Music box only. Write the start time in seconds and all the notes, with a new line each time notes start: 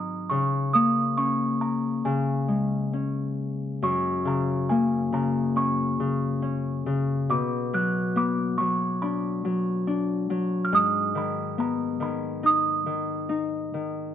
Already playing: A#5
0.30 C#6
0.73 D#6
1.18 C#6
1.61 A#5
2.05 G#5
3.84 C#6
4.27 A#5
4.69 G#5
5.14 A#5
5.57 C#6
7.30 D6
7.74 F#6
8.17 D6
8.58 C#6
9.02 B5
10.65 F6
10.75 D#6
11.18 B5
11.60 A#5
12.03 B5
12.46 D#6